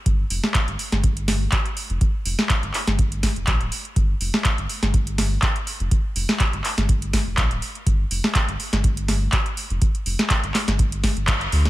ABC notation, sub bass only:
X:1
M:4/4
L:1/16
Q:"Swing 16ths" 1/4=123
K:Gm
V:1 name="Sub bass" clef=bass
G,,, z F,,, z2 G,,, z G,,,4- G,,, z3 F,,, | z2 F,,, z2 G,,, z G,,,4 F,,, B,,, D,,, z2 | G,,, z F,,, z2 G,,, z G,,,4- G,,, z3 F,,, | z2 F,,, z2 G,,, z G,,,4 F,,, B,,, D,,, z2 |
G,,, z F,,, z2 G,,, z G,,,4- G,,, z3 F,,, | z2 F,,, z2 G,,, z G,,,4 G,,,3 D,, z |]